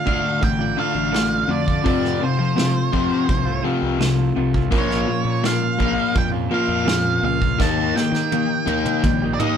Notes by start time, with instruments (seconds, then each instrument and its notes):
Already playing: clean electric guitar D3 A3 D4 F4, lead electric guitar F5
0.06 fingered electric bass D2, overdriven electric guitar D3 A3 D4, kick
0.24 muted clean electric guitar stroke
0.41 fingered electric bass A1, overdriven electric guitar D3 A3, lead electric guitar G5, kick, open hi-hat
0.59 clean electric guitar A3 D4 F4
0.76 clean electric guitar D3 A3 D4 F4, overdriven electric guitar D3 A3 D4, lead electric guitar F5
0.95 fingered electric bass A1, muted clean electric guitar stroke
1.12 clean electric guitar D3 A3 D4 F4, overdriven electric guitar D3 A3, snare, open hi-hat
1.48 fingered electric bass F2, overdriven electric guitar D3 A3, clean electric guitar D3 A3 D4 F4, lead electric guitar D5
1.67 clean electric guitar A3 D4 F4, kick
1.84 overdriven electric guitar F2 C3 F3, fingered electric bass F2, clean electric guitar F3 A3 C4 F4, lead electric guitar D5, kick, open hi-hat
2.05 snare
2.20 overdriven electric guitar F2 C3, clean electric guitar F3 A3 C4 F4, lead electric guitar C5
2.38 fingered electric bass F3, clean electric guitar A3 C4 F4
2.56 overdriven electric guitar F2 C3, clean electric guitar F3 A3 C4 F4, snare, open hi-hat
2.92 overdriven electric guitar F2 C3 F3, fingered electric bass F2, kick
3.11 muted clean electric guitar stroke
3.29 fingered electric bass C2, overdriven electric guitar F2 C3, kick, open hi-hat
3.45 clean electric guitar A3 C4 F4
3.63 overdriven electric guitar F2 C3 F3, clean electric guitar F3 A3 C4 F4
3.82 fingered electric bass C2, muted clean electric guitar stroke
3.99 overdriven electric guitar F2 C3, clean electric guitar F3 A3 C4 F4, snare, open hi-hat
4.35 fingered electric bass C2, overdriven electric guitar F2 C3, clean electric guitar F3 A3 C4 F4
4.54 clean electric guitar A3 C4 F4, kick
4.70 fingered electric bass A#1, clean electric guitar A#2 F3 A#3 C#4 F4, overdriven electric guitar A#2 F3 A#3, kick, open hi-hat
4.78 lead electric guitar C#5
4.91 snare
5.07 overdriven electric guitar A#2 F3, clean electric guitar F3 A#3 C#4 F4
5.25 fingered electric bass A#2, clean electric guitar A#3 C#4 F4
5.43 clean electric guitar A#2 F3 A#3 C#4 F4, overdriven electric guitar A#2 F3, lead electric guitar F5, snare, open hi-hat
5.78 fingered electric bass A#1, overdriven electric guitar A#2 F3 A#3, kick
5.97 muted clean electric guitar stroke
6.15 fingered electric bass F2, overdriven electric guitar A#2 F3, lead electric guitar G5, kick, open hi-hat
6.32 clean electric guitar A#3 C#4 F4
6.50 overdriven electric guitar A#2 F3 A#3, clean electric guitar F3 A#3 C#4 F4
6.54 lead electric guitar F5
6.68 fingered electric bass F2, muted clean electric guitar stroke
6.85 clean electric guitar A#2 F3 A#3 C#4 F4, overdriven electric guitar A#2 F3, snare, open hi-hat
7.21 fingered electric bass C#2, overdriven electric guitar A#2 F3, clean electric guitar F3 A#3 C#4 F4, lead electric guitar F5
7.40 clean electric guitar A#3 C#4 F4, kick
7.58 fingered electric bass D#2, overdriven electric guitar D#3 A#3 D#4, clean electric guitar D#3 A#3 D#4 G4, lead electric guitar A5, kick, snare
7.94 clean electric guitar D#3 A#3 D#4 G4, overdriven electric guitar D#3 A#3, lead electric guitar G5, snare
8.12 fingered electric bass D#3, clean electric guitar D#4 G4, snare
8.16 clean electric guitar A#3
8.31 clean electric guitar D#3 A#3 D#4 G4, overdriven electric guitar D#3 A#3, high tom
8.66 fingered electric bass D#2, overdriven electric guitar D#3 A#3 D#4, high tom
8.86 muted clean electric guitar stroke, mid tom
9.03 fingered electric bass A#1, overdriven electric guitar D#3 A#3, kick, mid tom
9.22 clean electric guitar A#3 D#4 G4
9.34 lead electric guitar D5
9.40 clean electric guitar D#3 A#3 D#4 G4, overdriven electric guitar D#3 A#3 D#4, lead electric guitar D#5, mid tom